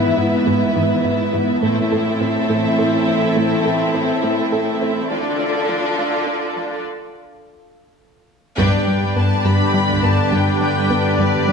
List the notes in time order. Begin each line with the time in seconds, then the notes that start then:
Already playing: G#2 E3 B3 E4 B4 E5
0.17 G#2 E4
0.47 G#2 G#3
0.76 G#2 E3
1.04 G#2 E4
1.33 G#2 G#3
1.62 A2 E3 A3 C4 E4 A4 E5
1.92 A2 A4
2.21 A2 C4
2.50 A2 A3
2.79 A2 A4
3.08 A2 C4
3.36 A2 A3
3.65 A2 A4
3.94 A2 C4
4.23 A2 A3
4.52 A2 A4
4.82 A2 C4
5.11 D2 D3 D4 F4 A4 D5
5.39 D2 D4
5.68 D2 F3
5.98 D2 D3
6.26 D2 D4
6.56 D2 F3
8.57 G2 D3 G3 B3 D4 G4 B4 D5 G5, taiko
8.87 G3
9.16 G2 B3 A5
9.45 G2 G3 B5
9.74 G3 D4
9.89 taiko
10.03 G2 B3 A5
10.32 G2 G3 G5
10.60 G3 G5
10.90 G2 B3
11.18 G2 G3 D5
11.48 G3 D4